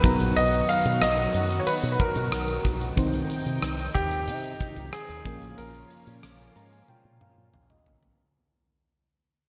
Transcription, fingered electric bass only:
0.04 B1
0.20 A#1
0.36 B1
0.85 B2
1.02 B1
1.34 F#2
1.67 muted fingered electric bass stroke
1.83 B2
2.16 B2
2.32 B1
2.65 B1
2.97 C2
3.46 C3
3.62 C2
3.95 D#2
4.28 C3
4.77 C2
5.09 D#2
5.25 A#1
5.42 A1
5.58 A#1
6.07 A#2
6.23 A#1
6.56 G#2
6.89 muted fingered electric bass stroke
7.05 A#2
7.38 A#2
7.54 A#1
7.86 A1

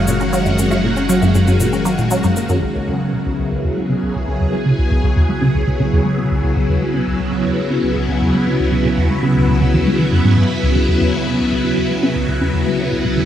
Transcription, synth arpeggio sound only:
0.08 A#2
0.20 C#4
0.33 F#3
0.46 F#2
0.59 F#2
0.71 F#2
0.84 A#2
0.97 C#4
1.09 F#3
1.22 F#2
1.35 F#2
1.48 F#2
1.60 A#2
1.73 C#4
1.85 F#3
1.98 A#2
2.11 F#3
2.24 F#2
2.37 A#3
2.49 F#2
2.62 C#2
2.75 C#2
2.88 E2
3.00 G#3
3.13 C#3
3.26 C#2
3.38 C#2
3.51 C#2
3.64 E2
3.76 G#3
3.89 C#3
4.02 C#2
4.15 C#2
4.27 C#2
4.40 E2
4.53 G#3
4.66 C#3
4.78 C#2
4.91 C#2
5.03 C#2
5.16 E2
5.29 G#3
5.41 C#3
5.54 C#2
5.67 C#2
5.80 C#2
5.92 E2
6.05 G#3
6.18 C#3
6.31 C#2
6.43 C#2
6.56 C#2
6.69 E2
6.81 G#3
6.94 C#3
7.07 C#2
7.19 C#2
7.32 C#2
7.45 E2
7.58 G#3
7.70 C#3
7.83 C#2
7.96 C#2
8.08 C#2
8.21 E2
8.34 G#3
8.47 C#3
8.59 C#2
8.72 C#2
8.85 C#2
8.98 E2
9.10 G#3
9.23 C#3
9.36 C#2
9.48 C#2
9.61 C#2
9.74 E2
9.86 G#3
9.99 E3
10.12 F#2
10.25 G#2
10.37 G#2
10.50 C#3
10.63 C#2
10.76 C#2
10.88 E2
11.01 E2
11.14 G#3
11.26 C#3
11.39 C#2
11.52 C#2
11.64 E2
11.77 E2
11.90 G#3
12.03 C#3
12.15 C#2
12.28 C#2
12.41 E2
12.54 E2
12.66 G#3
12.79 C#3
12.92 C#2
13.04 C#2
13.17 E2

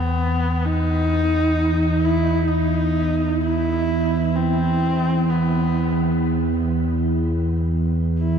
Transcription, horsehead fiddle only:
Already playing: B3
0.65 D#4
2.05 E4
2.48 D#4
3.44 E4
4.35 C4
5.29 B3
8.19 E4

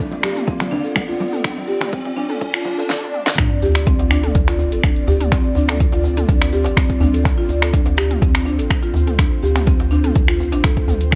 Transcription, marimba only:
0.00 D4
0.23 G4
0.47 C4
0.71 D4
0.84 A4
1.08 F4
1.33 A4
1.44 D4
1.68 G4
1.92 C4
2.17 D4
2.29 A4
2.53 F4
2.78 A4
3.38 D4
3.63 G4
3.87 C4
4.11 D4
4.23 A4
4.48 F4
4.72 A4
4.84 D4
5.08 G4
5.32 C4
5.56 D4
5.69 A4
5.93 F4
6.17 A4
6.29 D4
6.53 G4
6.77 C4
7.01 D4
7.14 A4
7.38 F4
7.62 A4
7.73 D4
7.97 G4
8.22 C4
8.46 D4
8.58 A4
8.83 F4
9.07 A4
9.18 D4
9.43 G4
9.67 C4
9.91 D4
10.04 A4
10.28 F4
10.52 D4
10.64 A4
10.88 A4
11.12 D4

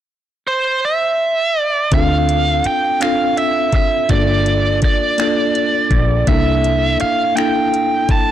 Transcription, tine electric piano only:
1.92 C4 D4 F4 A4
3.00 C4 D4 F4
3.05 A4
4.09 A#3 D4 F4 G#4
4.19 A4
5.18 A#3 D4 F4
5.22 A4
6.27 A#3 D4 E4 A4
7.35 A#3 D4 E4 A4

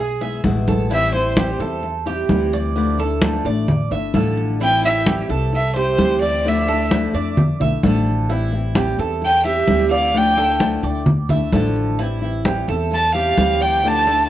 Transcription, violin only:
Already playing: G#4
0.94 E5
1.15 C5
4.63 G5
4.85 E5
5.56 E5
5.77 C5
6.23 D5
6.48 E5
9.25 G5
9.47 E5
9.92 F5
10.17 G5
12.94 A5
13.15 F5
13.62 G5
13.87 A5

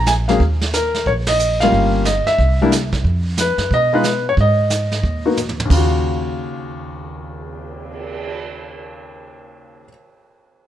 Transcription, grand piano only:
0.07 G#5
0.28 F#3 A#3 C#4 G#4 F5
0.74 A#4
1.07 C#5
1.28 D#5
1.60 G3 A#3 C#4 F4 F5
2.06 D#5
2.27 E5
2.62 G3 A#3 D4 E4
3.40 B4
3.74 D#5
3.93 G#3 B3 D#4 F4 B4
4.29 C#5
4.41 D#5
5.26 A#3 B3 D#4 F#4
5.65 D#2
5.70 C#3 F4
5.77 F#4

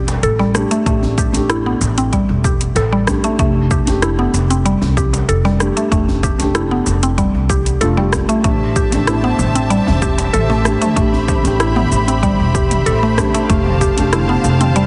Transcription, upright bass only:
Already playing: E1
0.23 A1
0.86 A1
1.34 A1
1.81 A1
2.29 E1
2.75 A1
3.39 F1
3.87 F1
4.34 F1
4.82 C2
5.29 F1
5.92 F1
6.40 F1
6.86 F1
7.34 C2
7.82 F1
8.44 A1
8.92 A1
9.39 A1
9.87 E1
10.34 A1
10.97 A1
11.45 A1
11.92 A1
12.40 E1
12.86 A1
13.50 F1
13.97 F1
14.44 F1

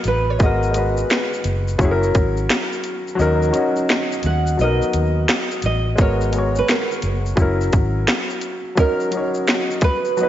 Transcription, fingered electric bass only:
0.05 A1
0.40 G#1
1.45 F#1
1.79 F#1
2.15 G#1
3.19 D#2
4.24 D#2
4.59 B1
4.94 D#2
5.64 A1
5.99 G#1
7.03 F#1
7.37 F#1
7.73 G#1

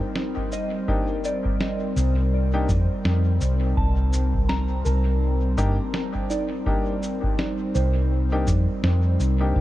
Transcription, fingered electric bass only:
1.97 C2
2.69 F2
3.05 F2
3.41 C2
3.77 C2
4.86 C2
5.58 G1
7.75 C2
8.47 F2
8.83 F2
9.20 C2
9.56 C2

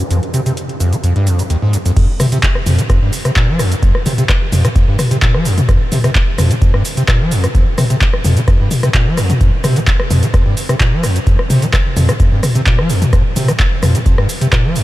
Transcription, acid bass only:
0.11 F2
0.34 C3
0.46 C3
0.80 F2
0.93 F3
1.04 F2
1.16 G2
1.27 F2
1.39 G#2
1.50 D#2
1.62 G#2
1.73 F2
1.86 F2
1.97 F2
2.20 C3
2.32 C3
2.66 F2
2.79 F3
2.90 F2
3.02 G2
3.25 C3
3.36 A#2
3.48 F3
3.59 F2
3.72 G2
3.83 F2
4.06 C3
4.18 C3
4.52 F2
4.65 F3
4.76 F2
4.88 G2
5.11 C3
5.22 A#2
5.34 F3
5.45 F2
5.58 G2
5.69 F2
5.92 C3
6.04 C3
6.38 F2
6.51 F3
6.62 F2
6.74 G2
6.97 C3
7.08 A#2
7.21 F3
7.32 F2
7.44 G2
7.55 F2
7.78 C3
7.90 C3
8.25 F2
8.37 F3
8.48 F2
8.60 G2
8.83 C3
8.94 A#2
9.07 F3
9.18 F2
9.30 G2
9.41 F2
9.64 C3
9.76 F3
10.11 F2
10.23 F3
10.34 F2
10.46 G2
10.69 C3
10.80 A#2
10.92 F3
11.04 F2
11.16 G2
11.27 F2
11.50 C3
11.62 F3
11.97 F2
12.09 F3
12.20 F2
12.32 G2
12.55 C3
12.66 A#2
12.79 F3
12.90 F2
13.02 G2
13.13 F2
13.36 C3
13.48 F3
13.83 F2
13.95 F3
14.06 F2
14.18 G2
14.41 C3
14.52 A#2
14.65 F3
14.76 F2

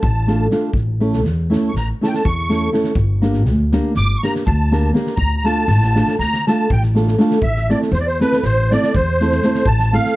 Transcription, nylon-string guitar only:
0.27 A3 D4 F4 A4
0.51 A3 D4 F4 A4
1.00 A3 C#4 E4 A4
1.50 A3 C#4 E4 A4
2.01 A3 C#4 E4 A4
2.49 A3 C#4 E4 A4
2.72 A3 C#4 E4 A4
3.22 A#3 D4 G4 A#4
3.73 A#3 D4 G4 A#4
4.23 A#3 D4 G4 A#4
4.71 A#3 D4 G4 A#4
4.94 A#3 D4 G4 A#4
5.44 A3 D4 F4 A4
5.95 A3 D4 F4 A4
6.47 A3 D4 F4 A4
6.95 A3 D4 F4 A4
7.18 A3 D4 F4 A4
7.70 A3 C4 E4 A4
8.20 A3 C4 E4 A4
8.71 A3 C4 E4 A4
9.20 A3 C4 E4 A4
9.43 A3 C4 E4 A4
9.92 A3 C4 E4 A4

